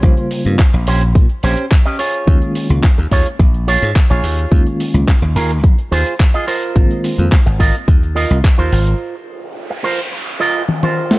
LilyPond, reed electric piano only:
\new Staff \with { instrumentName = "Reed electric piano" } { \time 4/4 \key aes \major \tempo 4 = 107 <des g bes f' c''>8. <des g bes c' f'>16 r2. | <ees aes bes des' f'>8. <ees aes bes des' f'>16 r2. | <ees aes bes des' f'>8. <ees aes bes des' f'>16 r2. | <ees aes bes c' f'>8. <ees aes bes c' f'>16 r2. |
r1 | }